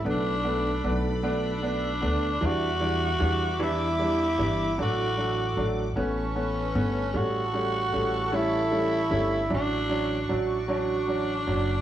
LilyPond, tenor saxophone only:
\new Staff \with { instrumentName = "Tenor saxophone" } { \time 6/8 \key d \major \tempo 4. = 51 d'4 r8 d'4. | fis'4. e'4. | fis'4 r8 cis'4. | fis'4. e'4. |
d'4 r8 d'4. | }